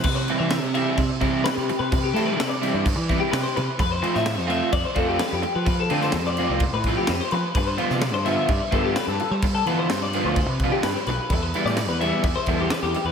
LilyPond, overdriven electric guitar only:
\new Staff \with { instrumentName = "Overdriven electric guitar" } { \time 4/4 \key c \major \tempo 4 = 128 r8 <e g c' e'>8 r8 <e g c' e'>8 r8 <e g c' e'>8 r4 | r8 <e g c' e'>8 r8 <e g c' e'>8 r8 <e g c' e'>8 r4 | r8 <f a c' f'>8 r8 <f a c' f'>8 r8 <f a c' f'>8 r4 | r8 <f a c' f'>8 r8 <f a c' f'>8 r8 <f a c' f'>8 r4 |
r8 <d f b f'>8 r8 <d f b f'>8 r8 <d f b f'>8 r4 | r8 <d f b f'>8 r8 <d f b f'>8 r8 <d f b f'>8 r4 | r8 <e g b e'>8 r8 <e g b e'>8 r8 <e g b e'>8 r4 | }